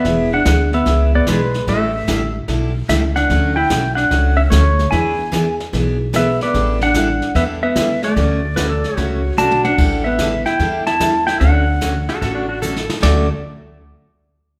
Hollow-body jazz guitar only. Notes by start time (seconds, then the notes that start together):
Already playing: B3
0.33 D4
0.74 B3
1.15 B3
1.29 G#3
1.69 A3
2.90 A3
3.16 D4
3.57 E4
3.97 D4
4.37 C#4
4.50 A3
4.92 E4
6.17 B3
6.43 B3
6.83 D4
7.36 B3
7.63 B3
8.04 A3
8.89 G#3
9.38 F#4
9.65 D4
10.06 B3
10.46 E4
10.87 E4
11.27 E4
11.41 D4
13.04 A3